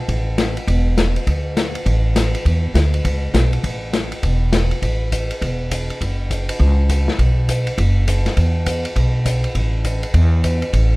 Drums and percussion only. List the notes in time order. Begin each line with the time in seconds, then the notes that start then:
0.08 kick, ride
0.38 snare, hi-hat pedal, ride
0.57 ride
0.68 kick, ride
0.98 snare, hi-hat pedal, ride
1.16 ride
1.27 kick, ride
1.57 snare, hi-hat pedal, ride
1.75 ride
1.86 kick, ride
2.16 snare, hi-hat pedal, ride
2.35 ride
2.45 kick, ride
2.75 snare, hi-hat pedal, ride
2.94 ride
3.05 kick, ride
3.34 snare, hi-hat pedal, ride
3.53 ride
3.64 kick, ride
3.93 snare, hi-hat pedal, ride
4.12 ride
4.23 kick, ride
4.53 snare, hi-hat pedal, ride
4.71 ride
4.82 kick, ride
5.12 kick, hi-hat pedal, ride
5.31 ride
5.42 kick, ride
5.71 kick, hi-hat pedal, ride
5.90 ride
6.01 kick, ride
6.30 kick, hi-hat pedal, ride
6.49 ride
6.60 kick
6.89 kick, hi-hat pedal, ride
7.08 snare
7.19 kick, ride
7.48 kick, hi-hat pedal, ride
7.67 ride
7.78 kick, ride
8.07 kick, hi-hat pedal, ride
8.26 snare, ride
8.37 kick, ride
8.66 kick, hi-hat pedal, ride
8.85 ride
8.96 kick, ride
9.26 kick, hi-hat pedal, ride
9.44 ride
9.55 kick, ride
9.85 kick, hi-hat pedal, ride
10.03 ride
10.14 kick, ride
10.44 kick, hi-hat pedal, ride
10.62 ride
10.73 kick, ride